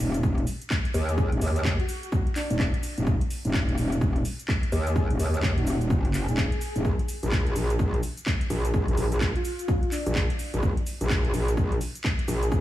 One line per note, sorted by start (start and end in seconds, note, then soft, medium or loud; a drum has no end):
0.00 0.46 D#1 loud
0.00 open hi-hat medium
0.00 shaker medium
0.14 closed hi-hat medium
0.14 shaker soft
0.23 kick loud
0.23 shaker soft
0.38 closed hi-hat soft
0.47 open hi-hat loud
0.47 shaker medium
0.62 closed hi-hat medium
0.62 shaker soft
0.70 kick loud
0.70 clap loud
0.70 shaker soft
0.85 closed hi-hat medium
0.94 1.30 D#2 medium
0.94 open hi-hat medium
0.94 shaker medium
1.09 1.15 G#4 medium
1.09 closed hi-hat medium
1.09 shaker soft
1.18 1.27 G#4 medium
1.18 kick loud
1.18 shaker soft
1.32 1.40 D#1 loud
1.32 closed hi-hat medium
1.41 1.77 D#2 medium
1.41 open hi-hat loud
1.41 shaker medium
1.56 closed hi-hat medium
1.56 shaker soft
1.65 kick loud
1.65 clap loud
1.65 shaker soft
1.80 1.85 F#4 medium
1.80 closed hi-hat soft
1.89 1.98 F#4 medium
1.89 open hi-hat medium
1.89 shaker medium
2.03 2.09 F#4 medium
2.03 closed hi-hat medium
2.03 shaker soft
2.12 2.22 F#4 medium
2.12 kick loud
2.12 shaker soft
2.27 closed hi-hat soft
2.36 2.45 D4 medium
2.36 clap medium
2.36 open hi-hat loud
2.36 shaker medium
2.50 2.72 D#1 medium
2.50 2.56 D4 medium
2.50 closed hi-hat medium
2.50 shaker soft
2.59 kick loud
2.59 clap loud
2.59 shaker soft
2.74 closed hi-hat medium
2.83 open hi-hat loud
2.83 shaker medium
2.98 3.05 D#1 medium
2.98 closed hi-hat medium
2.98 shaker soft
3.07 3.19 D#1 medium
3.07 kick loud
3.07 shaker soft
3.21 closed hi-hat medium
3.30 open hi-hat loud
3.30 shaker medium
3.45 3.76 D#1 loud
3.45 closed hi-hat medium
3.45 shaker soft
3.54 kick loud
3.54 clap loud
3.54 shaker soft
3.69 closed hi-hat soft
3.78 4.24 D#1 loud
3.78 open hi-hat medium
3.78 shaker medium
3.92 closed hi-hat medium
3.92 shaker soft
4.01 kick loud
4.01 shaker soft
4.16 closed hi-hat soft
4.25 open hi-hat loud
4.25 shaker medium
4.39 closed hi-hat medium
4.39 shaker soft
4.48 kick loud
4.48 clap loud
4.48 shaker soft
4.63 closed hi-hat soft
4.72 5.08 D#2 medium
4.72 open hi-hat loud
4.72 shaker medium
4.87 4.92 G#4 medium
4.87 closed hi-hat medium
4.87 shaker soft
4.96 5.05 G#4 medium
4.96 kick loud
4.96 shaker soft
5.10 5.18 D#1 loud
5.10 closed hi-hat soft
5.19 5.55 D#2 medium
5.19 open hi-hat loud
5.19 shaker medium
5.34 closed hi-hat medium
5.34 shaker soft
5.43 kick loud
5.43 clap loud
5.43 shaker soft
5.58 5.89 D#1 medium
5.58 5.63 F#4 medium
5.58 closed hi-hat soft
5.67 5.76 F#4 medium
5.67 open hi-hat medium
5.67 shaker medium
5.81 closed hi-hat medium
5.81 shaker soft
5.90 6.26 F#1 loud
5.90 kick loud
5.90 shaker soft
6.05 closed hi-hat soft
6.14 clap medium
6.14 open hi-hat loud
6.14 shaker medium
6.28 6.50 D#1 medium
6.28 6.76 G#4 medium
6.28 closed hi-hat medium
6.28 shaker soft
6.37 kick loud
6.37 clap loud
6.37 shaker soft
6.52 closed hi-hat soft
6.61 open hi-hat medium
6.61 shaker medium
6.76 6.83 D#1 medium
6.76 closed hi-hat medium
6.76 shaker soft
6.85 6.97 A#1 medium
6.85 kick loud
6.85 shaker soft
6.99 closed hi-hat medium
7.08 open hi-hat loud
7.08 shaker medium
7.23 7.54 A#1 loud
7.23 closed hi-hat medium
7.23 shaker soft
7.32 kick loud
7.32 clap loud
7.32 shaker soft
7.47 closed hi-hat soft
7.56 8.01 A#1 loud
7.56 open hi-hat medium
7.56 shaker medium
7.70 closed hi-hat medium
7.70 shaker soft
7.79 kick loud
7.79 shaker soft
7.94 closed hi-hat soft
8.03 open hi-hat loud
8.03 shaker medium
8.17 closed hi-hat medium
8.17 shaker soft
8.26 kick loud
8.26 clap loud
8.26 shaker soft
8.41 closed hi-hat soft
8.50 8.86 A#1 loud
8.50 open hi-hat medium
8.50 shaker medium
8.65 8.70 G#4 medium
8.65 closed hi-hat medium
8.65 shaker soft
8.74 8.83 G#4 medium
8.74 kick loud
8.74 shaker soft
8.88 8.96 A#1 loud
8.88 closed hi-hat medium
8.97 9.33 A#1 medium
8.97 open hi-hat medium
8.97 shaker medium
9.12 closed hi-hat medium
9.12 shaker soft
9.21 kick loud
9.21 clap loud
9.21 shaker soft
9.36 9.41 F4 medium
9.36 closed hi-hat soft
9.45 9.54 F4 medium
9.45 open hi-hat medium
9.45 shaker medium
9.59 9.65 F4 medium
9.59 closed hi-hat medium
9.59 shaker soft
9.68 9.78 F4 medium
9.68 kick loud
9.68 shaker soft
9.83 closed hi-hat soft
9.92 10.01 D4 medium
9.92 clap medium
9.92 open hi-hat loud
9.92 shaker medium
10.06 10.28 A#1 loud
10.06 10.12 D4 medium
10.06 closed hi-hat medium
10.06 shaker soft
10.15 kick loud
10.15 clap loud
10.15 shaker soft
10.30 closed hi-hat soft
10.39 open hi-hat medium
10.39 shaker medium
10.54 10.61 A#1 medium
10.54 closed hi-hat medium
10.54 shaker soft
10.63 10.75 A#1 medium
10.63 kick loud
10.63 shaker soft
10.77 closed hi-hat medium
10.86 open hi-hat loud
10.86 shaker medium
11.01 11.32 A#1 medium
11.01 closed hi-hat medium
11.01 shaker soft
11.10 kick loud
11.10 clap loud
11.10 shaker soft
11.25 closed hi-hat soft
11.34 11.79 A#1 loud
11.34 open hi-hat medium
11.34 shaker medium
11.48 closed hi-hat medium
11.48 shaker soft
11.57 kick loud
11.57 shaker soft
11.72 closed hi-hat soft
11.81 open hi-hat loud
11.81 shaker medium
11.95 closed hi-hat medium
11.95 shaker soft
12.04 kick loud
12.04 clap loud
12.04 shaker soft
12.19 closed hi-hat medium
12.28 12.61 A#1 medium
12.28 open hi-hat medium
12.28 shaker medium
12.43 12.48 G#4 medium
12.43 closed hi-hat medium
12.43 shaker soft
12.52 12.61 G#4 medium
12.52 kick loud
12.52 shaker soft